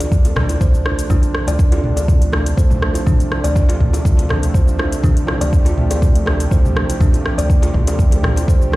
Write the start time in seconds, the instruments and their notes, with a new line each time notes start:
Already playing: analog synth bass D2, analog synth pad C3 F3 A3 D4
0.00 kalimba D5, closed hi-hat, high bongo, muted conga, shaker
0.12 kick, high conga, shaker
0.24 analog synth bass D2, closed hi-hat, high bongo, low bongo, shaker
0.36 kalimba D4, cross-stick, mid tom, high bongo, muted conga, high conga, low conga
0.49 closed hi-hat, low bongo, shaker
0.61 analog synth bass D2, kalimba C5, kick, shaker
0.74 muted conga, shaker
0.85 kalimba D4, cross-stick, low bongo
0.99 closed hi-hat, shaker
1.10 analog synth bass D2, kalimba D4, kick, mid tom, low bongo, muted conga, high conga, shaker
1.23 closed hi-hat, shaker
1.35 cross-stick
1.47 analog synth bass D2, kalimba D5, closed hi-hat, low bongo, high conga, shaker
1.59 kick, muted conga, shaker
1.72 kalimba F4, closed hi-hat, high bongo, low bongo, shaker
1.84 analog synth bass D2, mid tom
1.97 kalimba D5, closed hi-hat, high bongo, muted conga, shaker
2.08 kick, low bongo, low conga, shaker
2.21 analog synth bass D2, closed hi-hat, shaker
2.32 kalimba D4, cross-stick, high bongo, low bongo, muted conga, high conga
2.46 closed hi-hat, shaker
2.57 analog synth bass D2, kalimba C5, kick, shaker
2.70 low bongo, muted conga, low conga, shaker
2.82 kalimba D4, cross-stick
2.94 closed hi-hat, low bongo, shaker
3.06 analog synth bass D2, kalimba D4, kick, mid tom, muted conga, high conga, low conga, shaker
3.20 closed hi-hat, shaker
3.32 cross-stick, low bongo
3.44 analog synth bass D2, kalimba D5, closed hi-hat, high conga, shaker
3.55 kick, low bongo, muted conga, shaker
3.69 kalimba F4, closed hi-hat, high bongo, shaker
3.81 analog synth bass D2, kick, mid tom
3.93 kalimba D5, closed hi-hat, high bongo, low bongo, muted conga, shaker
4.05 kick, high conga, shaker
4.17 analog synth bass D2, closed hi-hat, high bongo, low bongo, shaker
4.29 kalimba D4, cross-stick, mid tom, high bongo, muted conga, high conga, low conga
4.43 closed hi-hat, shaker
4.54 analog synth bass D2, kalimba C5, kick, low bongo, shaker
4.67 muted conga, shaker
4.79 kalimba D4, cross-stick, low bongo
4.92 closed hi-hat, shaker
5.03 analog synth bass D2, kalimba D4, analog synth pad G4, kick, mid tom, low bongo, muted conga, high conga, shaker
5.17 closed hi-hat, shaker
5.27 cross-stick, low bongo
5.41 analog synth bass D2, kalimba D5, closed hi-hat, high conga, shaker
5.53 kick, muted conga, shaker
5.65 kalimba F4, closed hi-hat, high bongo, low bongo, shaker
5.78 analog synth bass D2, mid tom
5.90 kalimba D5, closed hi-hat, high bongo, low bongo, muted conga, shaker
6.02 kick, low conga, shaker
6.15 analog synth bass D2, closed hi-hat, shaker
6.26 kalimba D4, cross-stick, high bongo, low bongo, muted conga, high conga
6.40 closed hi-hat, shaker
6.51 analog synth bass D2, kalimba C5, kick, low bongo, shaker
6.65 muted conga, low conga, shaker
6.76 kalimba D4, cross-stick
6.89 closed hi-hat, low bongo, shaker
7.00 analog synth bass D2, kalimba D4, kick, mid tom, muted conga, high conga, low conga, shaker
7.13 closed hi-hat, low bongo, shaker
7.26 cross-stick
7.37 analog synth bass D2, kalimba D5, closed hi-hat, high conga, shaker
7.49 kick, low bongo, muted conga, shaker
7.62 kalimba F4, closed hi-hat, high bongo, shaker
7.74 analog synth bass D2, kick, mid tom, low bongo
7.87 kalimba D5, closed hi-hat, high bongo, muted conga, shaker
7.98 kick, high conga, shaker
8.11 analog synth bass D2, closed hi-hat, high bongo, low bongo, shaker
8.23 kalimba D4, cross-stick, mid tom, high bongo, muted conga, high conga, low conga
8.36 closed hi-hat, low bongo, shaker
8.48 analog synth bass D2, kalimba C5, kick, shaker
8.61 muted conga, shaker
8.72 kalimba D4, cross-stick, low bongo